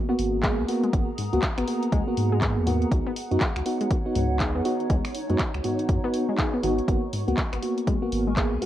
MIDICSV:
0, 0, Header, 1, 6, 480
1, 0, Start_track
1, 0, Key_signature, 5, "minor"
1, 0, Tempo, 495868
1, 902, Time_signature, 4, 2, 24, 8
1, 8380, End_track
2, 0, Start_track
2, 0, Title_t, "Ambient pad"
2, 0, Program_c, 0, 92
2, 0, Note_on_c, 0, 61, 86
2, 0, Note_on_c, 0, 66, 83
2, 0, Note_on_c, 0, 68, 95
2, 0, Note_on_c, 0, 78, 84
2, 0, Note_on_c, 0, 82, 91
2, 325, Note_off_c, 0, 66, 0
2, 538, Note_off_c, 0, 61, 0
2, 2822, Note_off_c, 0, 82, 0
2, 2824, Note_on_c, 0, 63, 81
2, 2926, Note_on_c, 0, 73, 82
2, 3704, Note_off_c, 0, 68, 0
2, 4002, Note_on_c, 0, 85, 80
2, 6661, Note_on_c, 0, 66, 97
2, 6965, Note_on_c, 0, 80, 89
2, 7042, Note_on_c, 0, 70, 91
2, 7285, Note_off_c, 0, 78, 0
2, 7296, Note_off_c, 0, 73, 0
2, 7507, Note_off_c, 0, 63, 0
2, 8380, Note_off_c, 0, 66, 0
2, 8380, Note_off_c, 0, 70, 0
2, 8380, Note_off_c, 0, 80, 0
2, 8380, Note_off_c, 0, 85, 0
2, 8380, End_track
3, 0, Start_track
3, 0, Title_t, "FM electric piano"
3, 0, Program_c, 1, 5
3, 84, Note_on_c, 1, 58, 87
3, 86, Note_on_c, 1, 59, 76
3, 89, Note_on_c, 1, 66, 99
3, 397, Note_off_c, 1, 58, 0
3, 399, Note_off_c, 1, 59, 0
3, 400, Note_off_c, 1, 66, 0
3, 418, Note_on_c, 1, 58, 93
3, 420, Note_on_c, 1, 59, 87
3, 423, Note_on_c, 1, 68, 101
3, 637, Note_off_c, 1, 58, 0
3, 638, Note_off_c, 1, 59, 0
3, 640, Note_off_c, 1, 68, 0
3, 658, Note_on_c, 1, 58, 92
3, 661, Note_on_c, 1, 59, 85
3, 663, Note_on_c, 1, 66, 99
3, 877, Note_off_c, 1, 58, 0
3, 879, Note_off_c, 1, 59, 0
3, 880, Note_off_c, 1, 66, 0
3, 898, Note_on_c, 1, 58, 72
3, 901, Note_on_c, 1, 59, 65
3, 904, Note_on_c, 1, 66, 80
3, 1060, Note_off_c, 1, 58, 0
3, 1062, Note_off_c, 1, 59, 0
3, 1063, Note_off_c, 1, 66, 0
3, 1284, Note_on_c, 1, 58, 91
3, 1287, Note_on_c, 1, 59, 77
3, 1289, Note_on_c, 1, 66, 100
3, 1403, Note_off_c, 1, 58, 0
3, 1404, Note_off_c, 1, 59, 0
3, 1406, Note_off_c, 1, 66, 0
3, 1619, Note_on_c, 1, 58, 73
3, 1622, Note_on_c, 1, 59, 70
3, 1625, Note_on_c, 1, 66, 83
3, 1971, Note_off_c, 1, 58, 0
3, 1972, Note_off_c, 1, 59, 0
3, 1974, Note_off_c, 1, 66, 0
3, 2004, Note_on_c, 1, 58, 83
3, 2007, Note_on_c, 1, 59, 81
3, 2010, Note_on_c, 1, 66, 94
3, 2318, Note_off_c, 1, 58, 0
3, 2319, Note_off_c, 1, 59, 0
3, 2321, Note_off_c, 1, 66, 0
3, 2340, Note_on_c, 1, 58, 89
3, 2343, Note_on_c, 1, 59, 88
3, 2345, Note_on_c, 1, 68, 99
3, 2558, Note_off_c, 1, 58, 0
3, 2560, Note_off_c, 1, 59, 0
3, 2561, Note_off_c, 1, 68, 0
3, 2579, Note_on_c, 1, 58, 96
3, 2582, Note_on_c, 1, 59, 89
3, 2585, Note_on_c, 1, 66, 105
3, 2798, Note_off_c, 1, 58, 0
3, 2799, Note_off_c, 1, 59, 0
3, 2801, Note_off_c, 1, 66, 0
3, 2823, Note_on_c, 1, 63, 65
3, 2825, Note_on_c, 1, 66, 79
3, 2982, Note_off_c, 1, 63, 0
3, 2984, Note_off_c, 1, 66, 0
3, 3205, Note_on_c, 1, 59, 85
3, 3208, Note_on_c, 1, 63, 79
3, 3211, Note_on_c, 1, 66, 96
3, 3323, Note_off_c, 1, 59, 0
3, 3325, Note_off_c, 1, 63, 0
3, 3326, Note_off_c, 1, 66, 0
3, 3540, Note_on_c, 1, 59, 74
3, 3543, Note_on_c, 1, 63, 68
3, 3546, Note_on_c, 1, 66, 85
3, 3891, Note_off_c, 1, 59, 0
3, 3893, Note_off_c, 1, 63, 0
3, 3894, Note_off_c, 1, 66, 0
3, 3925, Note_on_c, 1, 59, 82
3, 3927, Note_on_c, 1, 63, 80
3, 3931, Note_on_c, 1, 66, 93
3, 4238, Note_off_c, 1, 59, 0
3, 4239, Note_off_c, 1, 63, 0
3, 4241, Note_off_c, 1, 66, 0
3, 4260, Note_on_c, 1, 59, 96
3, 4263, Note_on_c, 1, 63, 86
3, 4266, Note_on_c, 1, 68, 106
3, 4478, Note_off_c, 1, 59, 0
3, 4480, Note_off_c, 1, 63, 0
3, 4481, Note_off_c, 1, 68, 0
3, 4499, Note_on_c, 1, 59, 88
3, 4502, Note_on_c, 1, 63, 83
3, 4505, Note_on_c, 1, 66, 108
3, 4718, Note_off_c, 1, 59, 0
3, 4719, Note_off_c, 1, 63, 0
3, 4721, Note_off_c, 1, 66, 0
3, 4739, Note_on_c, 1, 59, 78
3, 4742, Note_on_c, 1, 63, 68
3, 4745, Note_on_c, 1, 66, 84
3, 4900, Note_off_c, 1, 59, 0
3, 4902, Note_off_c, 1, 63, 0
3, 4903, Note_off_c, 1, 66, 0
3, 5124, Note_on_c, 1, 59, 88
3, 5128, Note_on_c, 1, 63, 79
3, 5130, Note_on_c, 1, 66, 95
3, 5243, Note_off_c, 1, 59, 0
3, 5245, Note_off_c, 1, 63, 0
3, 5246, Note_off_c, 1, 66, 0
3, 5458, Note_on_c, 1, 59, 78
3, 5462, Note_on_c, 1, 63, 67
3, 5464, Note_on_c, 1, 66, 82
3, 5811, Note_off_c, 1, 59, 0
3, 5812, Note_off_c, 1, 63, 0
3, 5813, Note_off_c, 1, 66, 0
3, 5844, Note_on_c, 1, 59, 88
3, 5847, Note_on_c, 1, 63, 76
3, 5850, Note_on_c, 1, 66, 97
3, 6158, Note_off_c, 1, 59, 0
3, 6159, Note_off_c, 1, 63, 0
3, 6160, Note_off_c, 1, 66, 0
3, 6179, Note_on_c, 1, 59, 89
3, 6182, Note_on_c, 1, 63, 82
3, 6184, Note_on_c, 1, 68, 100
3, 6398, Note_off_c, 1, 59, 0
3, 6399, Note_off_c, 1, 63, 0
3, 6400, Note_off_c, 1, 68, 0
3, 6418, Note_on_c, 1, 59, 92
3, 6421, Note_on_c, 1, 63, 85
3, 6423, Note_on_c, 1, 66, 107
3, 6637, Note_off_c, 1, 59, 0
3, 6638, Note_off_c, 1, 63, 0
3, 6640, Note_off_c, 1, 66, 0
3, 6657, Note_on_c, 1, 58, 79
3, 6660, Note_on_c, 1, 59, 68
3, 6663, Note_on_c, 1, 66, 83
3, 6820, Note_off_c, 1, 58, 0
3, 6821, Note_off_c, 1, 59, 0
3, 6823, Note_off_c, 1, 66, 0
3, 7044, Note_on_c, 1, 58, 86
3, 7046, Note_on_c, 1, 59, 84
3, 7049, Note_on_c, 1, 66, 97
3, 7163, Note_off_c, 1, 58, 0
3, 7164, Note_off_c, 1, 59, 0
3, 7166, Note_off_c, 1, 66, 0
3, 7378, Note_on_c, 1, 58, 74
3, 7381, Note_on_c, 1, 59, 71
3, 7383, Note_on_c, 1, 66, 83
3, 7730, Note_off_c, 1, 58, 0
3, 7732, Note_off_c, 1, 59, 0
3, 7733, Note_off_c, 1, 66, 0
3, 7763, Note_on_c, 1, 58, 83
3, 7765, Note_on_c, 1, 59, 77
3, 7768, Note_on_c, 1, 66, 92
3, 8077, Note_off_c, 1, 58, 0
3, 8078, Note_off_c, 1, 59, 0
3, 8079, Note_off_c, 1, 66, 0
3, 8098, Note_on_c, 1, 58, 92
3, 8101, Note_on_c, 1, 59, 89
3, 8104, Note_on_c, 1, 68, 103
3, 8317, Note_off_c, 1, 58, 0
3, 8319, Note_off_c, 1, 59, 0
3, 8320, Note_off_c, 1, 68, 0
3, 8337, Note_on_c, 1, 58, 92
3, 8340, Note_on_c, 1, 59, 87
3, 8343, Note_on_c, 1, 66, 100
3, 8380, Note_off_c, 1, 58, 0
3, 8380, Note_off_c, 1, 59, 0
3, 8380, Note_off_c, 1, 66, 0
3, 8380, End_track
4, 0, Start_track
4, 0, Title_t, "Synth pluck"
4, 0, Program_c, 2, 84
4, 86, Note_on_c, 2, 59, 99
4, 130, Note_off_c, 2, 59, 0
4, 421, Note_on_c, 2, 56, 104
4, 521, Note_off_c, 2, 56, 0
4, 806, Note_on_c, 2, 56, 82
4, 833, Note_off_c, 2, 56, 0
4, 1143, Note_on_c, 2, 44, 81
4, 1242, Note_off_c, 2, 44, 0
4, 1527, Note_on_c, 2, 59, 101
4, 1570, Note_off_c, 2, 59, 0
4, 1861, Note_on_c, 2, 56, 108
4, 1961, Note_off_c, 2, 56, 0
4, 2248, Note_on_c, 2, 56, 78
4, 2273, Note_off_c, 2, 56, 0
4, 2583, Note_on_c, 2, 44, 76
4, 2682, Note_off_c, 2, 44, 0
4, 2968, Note_on_c, 2, 59, 107
4, 3011, Note_off_c, 2, 59, 0
4, 3302, Note_on_c, 2, 56, 96
4, 3402, Note_off_c, 2, 56, 0
4, 3688, Note_on_c, 2, 56, 75
4, 3714, Note_off_c, 2, 56, 0
4, 4023, Note_on_c, 2, 44, 82
4, 4122, Note_off_c, 2, 44, 0
4, 4407, Note_on_c, 2, 59, 98
4, 4450, Note_off_c, 2, 59, 0
4, 4741, Note_on_c, 2, 56, 107
4, 4841, Note_off_c, 2, 56, 0
4, 5127, Note_on_c, 2, 56, 75
4, 5153, Note_off_c, 2, 56, 0
4, 5462, Note_on_c, 2, 44, 75
4, 5562, Note_off_c, 2, 44, 0
4, 5847, Note_on_c, 2, 59, 101
4, 5890, Note_off_c, 2, 59, 0
4, 6088, Note_on_c, 2, 56, 81
4, 6131, Note_off_c, 2, 56, 0
4, 6326, Note_on_c, 2, 59, 94
4, 6370, Note_off_c, 2, 59, 0
4, 6422, Note_on_c, 2, 51, 79
4, 6488, Note_off_c, 2, 51, 0
4, 6902, Note_on_c, 2, 44, 80
4, 7002, Note_off_c, 2, 44, 0
4, 7287, Note_on_c, 2, 59, 101
4, 7330, Note_off_c, 2, 59, 0
4, 7622, Note_on_c, 2, 56, 100
4, 7722, Note_off_c, 2, 56, 0
4, 8007, Note_on_c, 2, 56, 78
4, 8033, Note_off_c, 2, 56, 0
4, 8341, Note_on_c, 2, 44, 79
4, 8380, Note_off_c, 2, 44, 0
4, 8380, End_track
5, 0, Start_track
5, 0, Title_t, "Sub bass"
5, 0, Program_c, 3, 38
5, 181, Note_on_c, 3, 32, 99
5, 566, Note_on_c, 3, 37, 76
5, 581, Note_off_c, 3, 32, 0
5, 626, Note_off_c, 3, 37, 0
5, 901, Note_on_c, 3, 32, 104
5, 993, Note_off_c, 3, 32, 0
5, 1288, Note_on_c, 3, 37, 106
5, 1347, Note_off_c, 3, 37, 0
5, 1527, Note_on_c, 3, 32, 101
5, 1586, Note_off_c, 3, 32, 0
5, 1862, Note_on_c, 3, 37, 109
5, 1953, Note_off_c, 3, 37, 0
5, 2103, Note_on_c, 3, 44, 92
5, 2489, Note_on_c, 3, 39, 83
5, 2504, Note_off_c, 3, 44, 0
5, 2766, Note_off_c, 3, 39, 0
5, 2823, Note_on_c, 3, 37, 100
5, 2913, Note_off_c, 3, 37, 0
5, 3208, Note_on_c, 3, 42, 104
5, 3267, Note_off_c, 3, 42, 0
5, 3448, Note_on_c, 3, 37, 101
5, 3507, Note_off_c, 3, 37, 0
5, 4023, Note_on_c, 3, 37, 103
5, 4408, Note_on_c, 3, 42, 79
5, 4422, Note_off_c, 3, 37, 0
5, 4467, Note_off_c, 3, 42, 0
5, 4743, Note_on_c, 3, 37, 102
5, 4833, Note_off_c, 3, 37, 0
5, 5127, Note_on_c, 3, 42, 101
5, 5187, Note_off_c, 3, 42, 0
5, 5367, Note_on_c, 3, 37, 101
5, 5426, Note_off_c, 3, 37, 0
5, 5702, Note_on_c, 3, 42, 103
5, 5793, Note_off_c, 3, 42, 0
5, 6421, Note_on_c, 3, 32, 88
5, 6591, Note_off_c, 3, 32, 0
5, 6661, Note_on_c, 3, 32, 98
5, 6752, Note_off_c, 3, 32, 0
5, 7046, Note_on_c, 3, 37, 99
5, 7106, Note_off_c, 3, 37, 0
5, 7286, Note_on_c, 3, 32, 93
5, 7346, Note_off_c, 3, 32, 0
5, 7861, Note_on_c, 3, 32, 98
5, 8246, Note_on_c, 3, 37, 76
5, 8261, Note_off_c, 3, 32, 0
5, 8306, Note_off_c, 3, 37, 0
5, 8380, End_track
6, 0, Start_track
6, 0, Title_t, "Drums"
6, 181, Note_on_c, 9, 46, 112
6, 278, Note_off_c, 9, 46, 0
6, 416, Note_on_c, 9, 39, 122
6, 421, Note_on_c, 9, 36, 118
6, 422, Note_on_c, 9, 42, 84
6, 513, Note_off_c, 9, 39, 0
6, 518, Note_off_c, 9, 36, 0
6, 519, Note_off_c, 9, 42, 0
6, 662, Note_on_c, 9, 46, 110
6, 759, Note_off_c, 9, 46, 0
6, 807, Note_on_c, 9, 42, 37
6, 901, Note_on_c, 9, 36, 125
6, 902, Note_off_c, 9, 42, 0
6, 902, Note_on_c, 9, 42, 85
6, 998, Note_off_c, 9, 36, 0
6, 999, Note_off_c, 9, 42, 0
6, 1142, Note_on_c, 9, 46, 114
6, 1238, Note_off_c, 9, 46, 0
6, 1287, Note_on_c, 9, 42, 37
6, 1376, Note_on_c, 9, 39, 127
6, 1381, Note_off_c, 9, 42, 0
6, 1381, Note_on_c, 9, 26, 74
6, 1381, Note_on_c, 9, 42, 81
6, 1382, Note_on_c, 9, 36, 127
6, 1473, Note_off_c, 9, 39, 0
6, 1478, Note_off_c, 9, 26, 0
6, 1478, Note_off_c, 9, 42, 0
6, 1479, Note_off_c, 9, 36, 0
6, 1527, Note_on_c, 9, 26, 61
6, 1527, Note_on_c, 9, 42, 55
6, 1622, Note_on_c, 9, 46, 116
6, 1623, Note_off_c, 9, 26, 0
6, 1623, Note_off_c, 9, 42, 0
6, 1719, Note_off_c, 9, 46, 0
6, 1768, Note_on_c, 9, 42, 54
6, 1862, Note_on_c, 9, 36, 125
6, 1863, Note_off_c, 9, 42, 0
6, 1863, Note_on_c, 9, 42, 79
6, 1959, Note_off_c, 9, 36, 0
6, 1959, Note_off_c, 9, 42, 0
6, 2103, Note_on_c, 9, 46, 107
6, 2200, Note_off_c, 9, 46, 0
6, 2337, Note_on_c, 9, 39, 122
6, 2342, Note_on_c, 9, 36, 121
6, 2342, Note_on_c, 9, 42, 78
6, 2433, Note_off_c, 9, 39, 0
6, 2439, Note_off_c, 9, 36, 0
6, 2439, Note_off_c, 9, 42, 0
6, 2583, Note_on_c, 9, 46, 113
6, 2680, Note_off_c, 9, 46, 0
6, 2729, Note_on_c, 9, 42, 37
6, 2822, Note_on_c, 9, 36, 127
6, 2823, Note_off_c, 9, 42, 0
6, 2823, Note_on_c, 9, 42, 80
6, 2919, Note_off_c, 9, 36, 0
6, 2920, Note_off_c, 9, 42, 0
6, 3063, Note_on_c, 9, 46, 120
6, 3159, Note_off_c, 9, 46, 0
6, 3209, Note_on_c, 9, 42, 35
6, 3297, Note_on_c, 9, 39, 119
6, 3303, Note_off_c, 9, 42, 0
6, 3303, Note_on_c, 9, 26, 71
6, 3303, Note_on_c, 9, 36, 127
6, 3303, Note_on_c, 9, 42, 76
6, 3394, Note_off_c, 9, 39, 0
6, 3400, Note_off_c, 9, 26, 0
6, 3400, Note_off_c, 9, 36, 0
6, 3400, Note_off_c, 9, 42, 0
6, 3448, Note_on_c, 9, 26, 60
6, 3448, Note_on_c, 9, 42, 52
6, 3542, Note_on_c, 9, 46, 113
6, 3544, Note_off_c, 9, 26, 0
6, 3544, Note_off_c, 9, 42, 0
6, 3639, Note_off_c, 9, 46, 0
6, 3686, Note_on_c, 9, 42, 54
6, 3782, Note_off_c, 9, 42, 0
6, 3782, Note_on_c, 9, 42, 74
6, 3783, Note_on_c, 9, 36, 124
6, 3879, Note_off_c, 9, 42, 0
6, 3880, Note_off_c, 9, 36, 0
6, 4022, Note_on_c, 9, 46, 110
6, 4119, Note_off_c, 9, 46, 0
6, 4256, Note_on_c, 9, 39, 127
6, 4262, Note_on_c, 9, 42, 76
6, 4263, Note_on_c, 9, 36, 126
6, 4353, Note_off_c, 9, 39, 0
6, 4358, Note_off_c, 9, 42, 0
6, 4359, Note_off_c, 9, 36, 0
6, 4502, Note_on_c, 9, 46, 106
6, 4599, Note_off_c, 9, 46, 0
6, 4647, Note_on_c, 9, 42, 34
6, 4741, Note_off_c, 9, 42, 0
6, 4741, Note_on_c, 9, 42, 73
6, 4742, Note_on_c, 9, 36, 127
6, 4838, Note_off_c, 9, 42, 0
6, 4839, Note_off_c, 9, 36, 0
6, 4886, Note_on_c, 9, 26, 64
6, 4886, Note_on_c, 9, 46, 66
6, 4981, Note_off_c, 9, 46, 0
6, 4981, Note_on_c, 9, 46, 113
6, 4982, Note_off_c, 9, 26, 0
6, 5078, Note_off_c, 9, 46, 0
6, 5126, Note_on_c, 9, 42, 34
6, 5216, Note_on_c, 9, 39, 118
6, 5221, Note_off_c, 9, 42, 0
6, 5221, Note_on_c, 9, 26, 79
6, 5221, Note_on_c, 9, 42, 77
6, 5222, Note_on_c, 9, 36, 127
6, 5313, Note_off_c, 9, 39, 0
6, 5318, Note_off_c, 9, 26, 0
6, 5318, Note_off_c, 9, 36, 0
6, 5318, Note_off_c, 9, 42, 0
6, 5367, Note_on_c, 9, 26, 63
6, 5367, Note_on_c, 9, 42, 50
6, 5461, Note_on_c, 9, 46, 113
6, 5464, Note_off_c, 9, 26, 0
6, 5464, Note_off_c, 9, 42, 0
6, 5558, Note_off_c, 9, 46, 0
6, 5606, Note_on_c, 9, 42, 54
6, 5701, Note_off_c, 9, 42, 0
6, 5701, Note_on_c, 9, 36, 125
6, 5701, Note_on_c, 9, 42, 77
6, 5797, Note_off_c, 9, 42, 0
6, 5798, Note_off_c, 9, 36, 0
6, 5941, Note_on_c, 9, 46, 114
6, 6038, Note_off_c, 9, 46, 0
6, 6176, Note_on_c, 9, 39, 114
6, 6181, Note_on_c, 9, 36, 121
6, 6182, Note_on_c, 9, 42, 72
6, 6273, Note_off_c, 9, 39, 0
6, 6278, Note_off_c, 9, 36, 0
6, 6278, Note_off_c, 9, 42, 0
6, 6422, Note_on_c, 9, 46, 112
6, 6519, Note_off_c, 9, 46, 0
6, 6568, Note_on_c, 9, 42, 36
6, 6661, Note_on_c, 9, 36, 124
6, 6663, Note_off_c, 9, 42, 0
6, 6663, Note_on_c, 9, 42, 79
6, 6758, Note_off_c, 9, 36, 0
6, 6760, Note_off_c, 9, 42, 0
6, 6902, Note_on_c, 9, 46, 110
6, 6999, Note_off_c, 9, 46, 0
6, 7048, Note_on_c, 9, 42, 35
6, 7137, Note_on_c, 9, 39, 113
6, 7141, Note_on_c, 9, 36, 123
6, 7142, Note_off_c, 9, 42, 0
6, 7142, Note_on_c, 9, 26, 77
6, 7142, Note_on_c, 9, 42, 74
6, 7234, Note_off_c, 9, 39, 0
6, 7238, Note_off_c, 9, 36, 0
6, 7239, Note_off_c, 9, 26, 0
6, 7239, Note_off_c, 9, 42, 0
6, 7288, Note_on_c, 9, 26, 64
6, 7288, Note_on_c, 9, 42, 51
6, 7382, Note_on_c, 9, 46, 106
6, 7385, Note_off_c, 9, 26, 0
6, 7385, Note_off_c, 9, 42, 0
6, 7479, Note_off_c, 9, 46, 0
6, 7529, Note_on_c, 9, 42, 55
6, 7621, Note_on_c, 9, 36, 127
6, 7622, Note_off_c, 9, 42, 0
6, 7622, Note_on_c, 9, 42, 74
6, 7718, Note_off_c, 9, 36, 0
6, 7719, Note_off_c, 9, 42, 0
6, 7862, Note_on_c, 9, 46, 109
6, 7959, Note_off_c, 9, 46, 0
6, 8097, Note_on_c, 9, 39, 112
6, 8101, Note_on_c, 9, 36, 122
6, 8102, Note_on_c, 9, 42, 76
6, 8194, Note_off_c, 9, 39, 0
6, 8198, Note_off_c, 9, 36, 0
6, 8199, Note_off_c, 9, 42, 0
6, 8343, Note_on_c, 9, 46, 104
6, 8380, Note_off_c, 9, 46, 0
6, 8380, End_track
0, 0, End_of_file